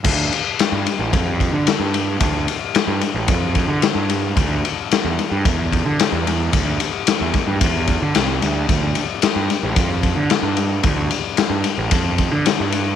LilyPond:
<<
  \new Staff \with { instrumentName = "Picked electric bass" } { \clef bass \time 4/4 \key d \minor \tempo 4 = 111 d,8 r8. g,16 r16 a,,16 f,8. d16 r16 g,8. | d,8 r8. g,16 r16 a,,16 f,8. d16 r16 g,8. | d,8 r8. e,16 r16 g,16 e,8. d16 r16 e,8. | d,8 r8. e,16 r16 g,16 e,8. d16 c,8 d,8 |
d,8 r8. g,16 r16 a,,16 f,8. d16 r16 g,8. | d,8 r8. g,16 r16 a,,16 f,8. d16 r16 g,8. | }
  \new DrumStaff \with { instrumentName = "Drums" } \drummode { \time 4/4 <cymc bd>8 cymr8 <cymr sn>8 cymr8 <bd cymr>8 <bd cymr>8 <cymr sn>8 cymr8 | <bd cymr>8 cymr8 <cymr sn>8 cymr8 <bd cymr>8 <bd cymr>8 <cymr sn>8 cymr8 | <bd cymr>8 cymr8 <cymr sn>8 cymr8 <bd cymr>8 <bd cymr>8 <cymr sn>8 cymr8 | <bd cymr>8 cymr8 <cymr sn>8 <bd cymr sn>8 <bd cymr>8 <bd cymr>8 <cymr sn>8 cymr8 |
<bd cymr>8 cymr8 <cymr sn>8 <cymr sn>8 <bd cymr>8 <bd cymr>8 <cymr sn>8 cymr8 | <bd cymr>8 cymr8 <cymr sn>8 cymr8 <bd cymr>8 <bd cymr>8 <cymr sn>8 cymr8 | }
>>